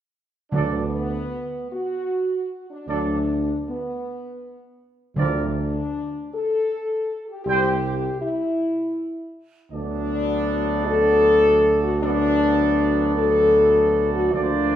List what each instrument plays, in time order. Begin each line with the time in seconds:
0.51 tuba D2, timpani D3, trombone section F#3 D4, french horn section B3, trumpet section A4 D5
1.72 french horn section F#4
2.70 french horn section D4
2.87 tuba D2, trombone section F#3 D4, french horn section D4, trumpet section A4 D5
3.68 french horn section B3
5.15 tuba D2, timpani D3, trombone section F3 C4, french horn section D4, trumpet section A#4 D5
6.33 french horn section A4
7.28 french horn section G4
7.44 tuba C2, trombone section G3 C4, french horn section G4, trumpet section C5 G5
8.21 french horn section E4
9.71 tuba D2, trombone section F#3 B3, french horn section D4, trumpet section A4 D5
10.86 french horn section A4
11.83 french horn section F#4
12.01 trombone section F#3 B3, french horn section D4, trumpet section A4 D5
13.17 french horn section A4
13.58 trumpet section A4
14.14 french horn section F#4
14.32 tuba D2, trombone section F3 A#3, french horn section D4, trumpet section C5 D5